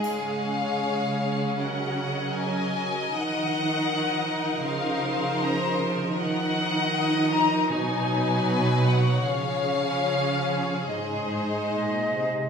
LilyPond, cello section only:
\new Staff \with { instrumentName = "Cello section" } { \clef bass \time 4/4 \key des \major \tempo 4 = 78 des1 | ees2 des2 | ees2 ces2 | des2 aes,4 bes,8 c8 | }